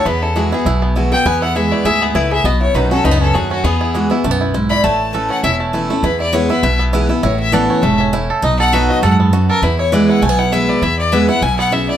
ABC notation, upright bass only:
X:1
M:4/4
L:1/8
Q:"Swing" 1/4=201
K:Emix
V:1 name="Upright bass" clef=bass
E,,4 B,,,4 | E,,4 D,,2 C,,2 | B,,,2 B,,,2 C,,2 ^D,,2 | E,,4 B,,,4 |
A,,,4 E,,,4 | E,,4 B,,,4 | A,,,4 E,,,4 | B,,,4 F,,4 |
E,,4 B,,,4 | E,,4 B,,,4 |]